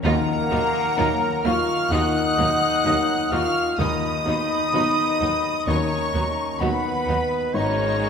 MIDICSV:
0, 0, Header, 1, 12, 480
1, 0, Start_track
1, 0, Tempo, 937500
1, 22, Time_signature, 4, 2, 24, 8
1, 4145, End_track
2, 0, Start_track
2, 0, Title_t, "Violin section"
2, 0, Program_c, 0, 48
2, 26, Note_on_c, 0, 82, 127
2, 718, Note_off_c, 0, 82, 0
2, 740, Note_on_c, 0, 89, 127
2, 972, Note_off_c, 0, 89, 0
2, 977, Note_on_c, 0, 90, 127
2, 1698, Note_off_c, 0, 90, 0
2, 1699, Note_on_c, 0, 89, 126
2, 1938, Note_off_c, 0, 89, 0
2, 1939, Note_on_c, 0, 87, 127
2, 2884, Note_off_c, 0, 87, 0
2, 2904, Note_on_c, 0, 85, 119
2, 3381, Note_off_c, 0, 85, 0
2, 3382, Note_on_c, 0, 83, 118
2, 3863, Note_off_c, 0, 83, 0
2, 3864, Note_on_c, 0, 85, 109
2, 4145, Note_off_c, 0, 85, 0
2, 4145, End_track
3, 0, Start_track
3, 0, Title_t, "Flute section"
3, 0, Program_c, 1, 73
3, 28, Note_on_c, 1, 78, 109
3, 719, Note_off_c, 1, 78, 0
3, 742, Note_on_c, 1, 85, 121
3, 974, Note_off_c, 1, 85, 0
3, 986, Note_on_c, 1, 87, 124
3, 1703, Note_off_c, 1, 87, 0
3, 1707, Note_on_c, 1, 85, 103
3, 1942, Note_off_c, 1, 85, 0
3, 1951, Note_on_c, 1, 83, 112
3, 2890, Note_off_c, 1, 83, 0
3, 2912, Note_on_c, 1, 82, 101
3, 3381, Note_on_c, 1, 78, 106
3, 3385, Note_off_c, 1, 82, 0
3, 3726, Note_off_c, 1, 78, 0
3, 3866, Note_on_c, 1, 82, 94
3, 4145, Note_off_c, 1, 82, 0
3, 4145, End_track
4, 0, Start_track
4, 0, Title_t, "Clarinet"
4, 0, Program_c, 2, 71
4, 28, Note_on_c, 2, 70, 127
4, 743, Note_on_c, 2, 77, 108
4, 751, Note_off_c, 2, 70, 0
4, 983, Note_on_c, 2, 78, 127
4, 990, Note_off_c, 2, 77, 0
4, 1700, Note_on_c, 2, 77, 114
4, 1708, Note_off_c, 2, 78, 0
4, 1939, Note_off_c, 2, 77, 0
4, 1942, Note_on_c, 2, 75, 127
4, 2907, Note_on_c, 2, 73, 102
4, 2915, Note_off_c, 2, 75, 0
4, 3242, Note_off_c, 2, 73, 0
4, 3383, Note_on_c, 2, 71, 107
4, 3860, Note_on_c, 2, 73, 122
4, 3867, Note_off_c, 2, 71, 0
4, 4145, Note_off_c, 2, 73, 0
4, 4145, End_track
5, 0, Start_track
5, 0, Title_t, "Cor anglais"
5, 0, Program_c, 3, 69
5, 33, Note_on_c, 3, 70, 121
5, 746, Note_on_c, 3, 77, 116
5, 754, Note_off_c, 3, 70, 0
5, 977, Note_on_c, 3, 78, 127
5, 985, Note_off_c, 3, 77, 0
5, 1696, Note_on_c, 3, 77, 106
5, 1704, Note_off_c, 3, 78, 0
5, 1942, Note_on_c, 3, 75, 116
5, 1950, Note_off_c, 3, 77, 0
5, 2898, Note_off_c, 3, 75, 0
5, 2901, Note_on_c, 3, 73, 107
5, 3232, Note_off_c, 3, 73, 0
5, 3383, Note_on_c, 3, 71, 98
5, 3865, Note_on_c, 3, 73, 104
5, 3872, Note_off_c, 3, 71, 0
5, 4145, Note_off_c, 3, 73, 0
5, 4145, End_track
6, 0, Start_track
6, 0, Title_t, "Harp"
6, 0, Program_c, 4, 46
6, 0, Note_on_c, 4, 53, 82
6, 0, Note_on_c, 4, 58, 69
6, 0, Note_on_c, 4, 70, 75
6, 0, Note_on_c, 4, 82, 75
6, 23, Note_on_c, 4, 51, 88
6, 143, Note_on_c, 4, 63, 77
6, 254, Note_off_c, 4, 70, 0
6, 260, Note_on_c, 4, 70, 81
6, 378, Note_on_c, 4, 75, 78
6, 609, Note_off_c, 4, 82, 0
6, 615, Note_on_c, 4, 82, 73
6, 850, Note_off_c, 4, 75, 0
6, 856, Note_on_c, 4, 75, 72
6, 973, Note_off_c, 4, 58, 0
6, 979, Note_on_c, 4, 58, 74
6, 1070, Note_off_c, 4, 53, 0
6, 1090, Note_off_c, 4, 63, 0
6, 1096, Note_on_c, 4, 63, 73
6, 1206, Note_off_c, 4, 70, 0
6, 1212, Note_on_c, 4, 70, 80
6, 1331, Note_off_c, 4, 75, 0
6, 1337, Note_on_c, 4, 75, 77
6, 1567, Note_off_c, 4, 82, 0
6, 1573, Note_on_c, 4, 82, 82
6, 1806, Note_off_c, 4, 75, 0
6, 1812, Note_on_c, 4, 75, 70
6, 1932, Note_off_c, 4, 51, 0
6, 1938, Note_on_c, 4, 51, 82
6, 1954, Note_off_c, 4, 70, 0
6, 1954, Note_off_c, 4, 82, 0
6, 1958, Note_off_c, 4, 58, 0
6, 2056, Note_off_c, 4, 63, 0
6, 2062, Note_on_c, 4, 63, 61
6, 2180, Note_on_c, 4, 59, 73
6, 2294, Note_off_c, 4, 75, 0
6, 2300, Note_on_c, 4, 75, 75
6, 2423, Note_on_c, 4, 78, 74
6, 2657, Note_off_c, 4, 78, 0
6, 2664, Note_on_c, 4, 78, 67
6, 2776, Note_off_c, 4, 75, 0
6, 2782, Note_on_c, 4, 75, 57
6, 2896, Note_off_c, 4, 51, 0
6, 2902, Note_on_c, 4, 51, 78
6, 3015, Note_off_c, 4, 63, 0
6, 3021, Note_on_c, 4, 63, 73
6, 3141, Note_on_c, 4, 66, 75
6, 3252, Note_off_c, 4, 75, 0
6, 3258, Note_on_c, 4, 75, 68
6, 3373, Note_off_c, 4, 78, 0
6, 3379, Note_on_c, 4, 78, 73
6, 3612, Note_off_c, 4, 78, 0
6, 3618, Note_on_c, 4, 78, 69
6, 3736, Note_off_c, 4, 75, 0
6, 3742, Note_on_c, 4, 75, 66
6, 3861, Note_on_c, 4, 44, 75
6, 3880, Note_off_c, 4, 78, 0
6, 3882, Note_off_c, 4, 51, 0
6, 3985, Note_on_c, 4, 56, 62
6, 4102, Note_on_c, 4, 68, 65
6, 4145, Note_off_c, 4, 44, 0
6, 4145, Note_off_c, 4, 56, 0
6, 4145, Note_off_c, 4, 59, 0
6, 4145, Note_off_c, 4, 63, 0
6, 4145, Note_off_c, 4, 66, 0
6, 4145, Note_off_c, 4, 68, 0
6, 4145, Note_off_c, 4, 75, 0
6, 4145, End_track
7, 0, Start_track
7, 0, Title_t, "Violin section"
7, 0, Program_c, 5, 48
7, 20, Note_on_c, 5, 63, 95
7, 20, Note_on_c, 5, 65, 101
7, 61, Note_off_c, 5, 63, 0
7, 61, Note_off_c, 5, 65, 0
7, 260, Note_on_c, 5, 65, 78
7, 262, Note_on_c, 5, 63, 84
7, 301, Note_off_c, 5, 65, 0
7, 303, Note_off_c, 5, 63, 0
7, 499, Note_on_c, 5, 65, 91
7, 500, Note_on_c, 5, 63, 89
7, 540, Note_off_c, 5, 65, 0
7, 541, Note_off_c, 5, 63, 0
7, 740, Note_on_c, 5, 65, 83
7, 741, Note_on_c, 5, 63, 72
7, 781, Note_off_c, 5, 65, 0
7, 782, Note_off_c, 5, 63, 0
7, 983, Note_on_c, 5, 63, 87
7, 986, Note_on_c, 5, 65, 95
7, 1024, Note_off_c, 5, 63, 0
7, 1027, Note_off_c, 5, 65, 0
7, 1225, Note_on_c, 5, 63, 67
7, 1225, Note_on_c, 5, 65, 63
7, 1266, Note_off_c, 5, 63, 0
7, 1266, Note_off_c, 5, 65, 0
7, 1463, Note_on_c, 5, 63, 79
7, 1465, Note_on_c, 5, 65, 78
7, 1504, Note_off_c, 5, 63, 0
7, 1506, Note_off_c, 5, 65, 0
7, 1703, Note_on_c, 5, 63, 79
7, 1703, Note_on_c, 5, 65, 79
7, 1744, Note_off_c, 5, 63, 0
7, 1744, Note_off_c, 5, 65, 0
7, 1944, Note_on_c, 5, 63, 90
7, 1945, Note_off_c, 5, 63, 0
7, 1945, Note_on_c, 5, 63, 84
7, 1986, Note_off_c, 5, 63, 0
7, 2191, Note_on_c, 5, 63, 74
7, 2192, Note_off_c, 5, 63, 0
7, 2192, Note_on_c, 5, 63, 69
7, 2233, Note_off_c, 5, 63, 0
7, 2430, Note_on_c, 5, 63, 84
7, 2471, Note_off_c, 5, 63, 0
7, 2663, Note_on_c, 5, 63, 68
7, 2664, Note_off_c, 5, 63, 0
7, 2664, Note_on_c, 5, 63, 78
7, 2705, Note_off_c, 5, 63, 0
7, 2908, Note_on_c, 5, 63, 77
7, 2909, Note_off_c, 5, 63, 0
7, 2909, Note_on_c, 5, 63, 77
7, 2950, Note_off_c, 5, 63, 0
7, 3146, Note_on_c, 5, 63, 63
7, 3147, Note_off_c, 5, 63, 0
7, 3147, Note_on_c, 5, 63, 66
7, 3188, Note_off_c, 5, 63, 0
7, 3383, Note_on_c, 5, 63, 76
7, 3385, Note_off_c, 5, 63, 0
7, 3385, Note_on_c, 5, 63, 76
7, 3426, Note_off_c, 5, 63, 0
7, 3623, Note_on_c, 5, 63, 69
7, 3624, Note_off_c, 5, 63, 0
7, 3624, Note_on_c, 5, 63, 73
7, 3665, Note_off_c, 5, 63, 0
7, 3865, Note_on_c, 5, 63, 80
7, 3868, Note_off_c, 5, 63, 0
7, 3868, Note_on_c, 5, 63, 86
7, 4145, Note_off_c, 5, 63, 0
7, 4145, End_track
8, 0, Start_track
8, 0, Title_t, "French horn section"
8, 0, Program_c, 6, 60
8, 21, Note_on_c, 6, 58, 127
8, 716, Note_off_c, 6, 58, 0
8, 740, Note_on_c, 6, 65, 107
8, 976, Note_on_c, 6, 63, 120
8, 977, Note_off_c, 6, 65, 0
8, 1698, Note_off_c, 6, 63, 0
8, 1700, Note_on_c, 6, 65, 116
8, 1935, Note_on_c, 6, 63, 112
8, 1938, Note_off_c, 6, 65, 0
8, 2882, Note_off_c, 6, 63, 0
8, 2910, Note_on_c, 6, 61, 89
8, 3384, Note_off_c, 6, 61, 0
8, 3389, Note_on_c, 6, 59, 91
8, 3867, Note_off_c, 6, 59, 0
8, 3873, Note_on_c, 6, 61, 105
8, 4145, Note_off_c, 6, 61, 0
8, 4145, End_track
9, 0, Start_track
9, 0, Title_t, "Viola section"
9, 0, Program_c, 7, 48
9, 28, Note_on_c, 7, 58, 83
9, 29, Note_on_c, 7, 54, 87
9, 69, Note_off_c, 7, 58, 0
9, 70, Note_off_c, 7, 54, 0
9, 264, Note_on_c, 7, 54, 79
9, 265, Note_on_c, 7, 58, 81
9, 305, Note_off_c, 7, 54, 0
9, 306, Note_off_c, 7, 58, 0
9, 504, Note_on_c, 7, 54, 83
9, 505, Note_on_c, 7, 58, 84
9, 545, Note_off_c, 7, 54, 0
9, 546, Note_off_c, 7, 58, 0
9, 738, Note_on_c, 7, 54, 84
9, 739, Note_on_c, 7, 58, 82
9, 779, Note_off_c, 7, 54, 0
9, 780, Note_off_c, 7, 58, 0
9, 974, Note_on_c, 7, 54, 84
9, 975, Note_on_c, 7, 58, 78
9, 1015, Note_off_c, 7, 54, 0
9, 1016, Note_off_c, 7, 58, 0
9, 1218, Note_on_c, 7, 54, 84
9, 1218, Note_on_c, 7, 58, 80
9, 1259, Note_off_c, 7, 54, 0
9, 1259, Note_off_c, 7, 58, 0
9, 1460, Note_on_c, 7, 54, 85
9, 1461, Note_on_c, 7, 58, 78
9, 1501, Note_off_c, 7, 54, 0
9, 1502, Note_off_c, 7, 58, 0
9, 1696, Note_on_c, 7, 54, 72
9, 1697, Note_on_c, 7, 58, 76
9, 1737, Note_off_c, 7, 54, 0
9, 1738, Note_off_c, 7, 58, 0
9, 1936, Note_on_c, 7, 54, 77
9, 1938, Note_on_c, 7, 59, 79
9, 1977, Note_off_c, 7, 54, 0
9, 1979, Note_off_c, 7, 59, 0
9, 2177, Note_on_c, 7, 54, 72
9, 2178, Note_on_c, 7, 59, 71
9, 2218, Note_off_c, 7, 54, 0
9, 2219, Note_off_c, 7, 59, 0
9, 2423, Note_on_c, 7, 54, 73
9, 2424, Note_on_c, 7, 59, 76
9, 2464, Note_off_c, 7, 54, 0
9, 2465, Note_off_c, 7, 59, 0
9, 2670, Note_on_c, 7, 54, 72
9, 2670, Note_on_c, 7, 59, 67
9, 2711, Note_off_c, 7, 54, 0
9, 2711, Note_off_c, 7, 59, 0
9, 2908, Note_on_c, 7, 59, 73
9, 2909, Note_on_c, 7, 54, 74
9, 2949, Note_off_c, 7, 59, 0
9, 2950, Note_off_c, 7, 54, 0
9, 3145, Note_on_c, 7, 59, 78
9, 3148, Note_on_c, 7, 54, 73
9, 3186, Note_off_c, 7, 59, 0
9, 3189, Note_off_c, 7, 54, 0
9, 3387, Note_on_c, 7, 54, 78
9, 3387, Note_on_c, 7, 59, 77
9, 3428, Note_off_c, 7, 54, 0
9, 3428, Note_off_c, 7, 59, 0
9, 3624, Note_on_c, 7, 59, 66
9, 3626, Note_on_c, 7, 54, 66
9, 3665, Note_off_c, 7, 59, 0
9, 3667, Note_off_c, 7, 54, 0
9, 3865, Note_on_c, 7, 56, 82
9, 3865, Note_on_c, 7, 58, 76
9, 4145, Note_off_c, 7, 56, 0
9, 4145, Note_off_c, 7, 58, 0
9, 4145, End_track
10, 0, Start_track
10, 0, Title_t, "Felt piano"
10, 0, Program_c, 8, 0
10, 0, Control_c, 8, 64, 127
10, 23, Note_on_c, 8, 39, 84
10, 23, Note_on_c, 8, 51, 74
10, 31, Control_c, 8, 64, 0
10, 130, Control_c, 8, 64, 127
10, 496, Note_on_c, 8, 58, 63
10, 499, Note_on_c, 8, 63, 70
10, 501, Note_on_c, 8, 54, 72
10, 953, Note_off_c, 8, 58, 0
10, 955, Note_off_c, 8, 63, 0
10, 956, Note_off_c, 8, 39, 0
10, 956, Note_off_c, 8, 51, 0
10, 956, Note_off_c, 8, 54, 0
10, 977, Note_on_c, 8, 39, 78
10, 979, Note_on_c, 8, 51, 85
10, 1464, Note_on_c, 8, 58, 59
10, 1464, Note_on_c, 8, 63, 60
10, 1466, Note_on_c, 8, 54, 68
10, 1917, Note_off_c, 8, 39, 0
10, 1918, Note_off_c, 8, 51, 0
10, 1919, Note_off_c, 8, 63, 0
10, 1920, Note_off_c, 8, 58, 0
10, 1921, Note_off_c, 8, 54, 0
10, 1938, Note_on_c, 8, 39, 81
10, 1939, Note_on_c, 8, 51, 68
10, 1945, Control_c, 8, 64, 0
10, 2036, Control_c, 8, 64, 127
10, 2423, Note_on_c, 8, 59, 64
10, 2426, Note_on_c, 8, 63, 64
10, 2429, Note_on_c, 8, 66, 67
10, 2882, Note_off_c, 8, 39, 0
10, 2882, Note_off_c, 8, 59, 0
10, 2883, Note_off_c, 8, 51, 0
10, 2884, Note_off_c, 8, 63, 0
10, 2885, Note_off_c, 8, 66, 0
10, 2904, Note_on_c, 8, 39, 72
10, 2905, Note_on_c, 8, 51, 71
10, 3382, Note_on_c, 8, 59, 51
10, 3383, Note_on_c, 8, 63, 53
10, 3386, Note_on_c, 8, 66, 66
10, 3842, Note_off_c, 8, 59, 0
10, 3843, Note_off_c, 8, 39, 0
10, 3843, Note_off_c, 8, 51, 0
10, 3843, Note_off_c, 8, 63, 0
10, 3845, Note_off_c, 8, 66, 0
10, 3861, Note_on_c, 8, 44, 70
10, 3862, Note_on_c, 8, 32, 64
10, 3871, Control_c, 8, 64, 0
10, 3967, Control_c, 8, 64, 127
10, 4145, Note_off_c, 8, 32, 0
10, 4145, Note_off_c, 8, 44, 0
10, 4145, End_track
11, 0, Start_track
11, 0, Title_t, "Cello section"
11, 0, Program_c, 10, 48
11, 23, Note_on_c, 10, 39, 100
11, 64, Note_off_c, 10, 39, 0
11, 262, Note_on_c, 10, 39, 92
11, 303, Note_off_c, 10, 39, 0
11, 504, Note_on_c, 10, 39, 87
11, 545, Note_off_c, 10, 39, 0
11, 742, Note_on_c, 10, 39, 88
11, 783, Note_off_c, 10, 39, 0
11, 980, Note_on_c, 10, 39, 92
11, 1021, Note_off_c, 10, 39, 0
11, 1222, Note_on_c, 10, 39, 100
11, 1263, Note_off_c, 10, 39, 0
11, 1464, Note_on_c, 10, 39, 92
11, 1505, Note_off_c, 10, 39, 0
11, 1704, Note_on_c, 10, 39, 90
11, 1745, Note_off_c, 10, 39, 0
11, 1941, Note_on_c, 10, 39, 97
11, 1982, Note_off_c, 10, 39, 0
11, 2184, Note_on_c, 10, 39, 96
11, 2225, Note_off_c, 10, 39, 0
11, 2429, Note_on_c, 10, 39, 86
11, 2470, Note_off_c, 10, 39, 0
11, 2667, Note_on_c, 10, 39, 80
11, 2708, Note_off_c, 10, 39, 0
11, 2905, Note_on_c, 10, 39, 86
11, 2946, Note_off_c, 10, 39, 0
11, 3143, Note_on_c, 10, 39, 78
11, 3184, Note_off_c, 10, 39, 0
11, 3382, Note_on_c, 10, 39, 82
11, 3423, Note_off_c, 10, 39, 0
11, 3625, Note_on_c, 10, 39, 75
11, 3666, Note_off_c, 10, 39, 0
11, 3865, Note_on_c, 10, 44, 76
11, 4145, Note_off_c, 10, 44, 0
11, 4145, End_track
12, 0, Start_track
12, 0, Title_t, "Double bass section"
12, 0, Program_c, 11, 48
12, 26, Note_on_c, 11, 39, 98
12, 67, Note_off_c, 11, 39, 0
12, 264, Note_on_c, 11, 39, 102
12, 305, Note_off_c, 11, 39, 0
12, 504, Note_on_c, 11, 39, 87
12, 545, Note_off_c, 11, 39, 0
12, 741, Note_on_c, 11, 39, 89
12, 782, Note_off_c, 11, 39, 0
12, 980, Note_on_c, 11, 39, 90
12, 1021, Note_off_c, 11, 39, 0
12, 1222, Note_on_c, 11, 39, 99
12, 1263, Note_off_c, 11, 39, 0
12, 1459, Note_on_c, 11, 39, 88
12, 1500, Note_off_c, 11, 39, 0
12, 1700, Note_on_c, 11, 39, 76
12, 1741, Note_off_c, 11, 39, 0
12, 1941, Note_on_c, 11, 39, 95
12, 1982, Note_off_c, 11, 39, 0
12, 2180, Note_on_c, 11, 39, 94
12, 2221, Note_off_c, 11, 39, 0
12, 2423, Note_on_c, 11, 39, 86
12, 2464, Note_off_c, 11, 39, 0
12, 2663, Note_on_c, 11, 39, 84
12, 2704, Note_off_c, 11, 39, 0
12, 2904, Note_on_c, 11, 39, 86
12, 2945, Note_off_c, 11, 39, 0
12, 3142, Note_on_c, 11, 39, 87
12, 3183, Note_off_c, 11, 39, 0
12, 3379, Note_on_c, 11, 39, 87
12, 3420, Note_off_c, 11, 39, 0
12, 3622, Note_on_c, 11, 39, 78
12, 3663, Note_off_c, 11, 39, 0
12, 3862, Note_on_c, 11, 32, 77
12, 4145, Note_off_c, 11, 32, 0
12, 4145, End_track
0, 0, End_of_file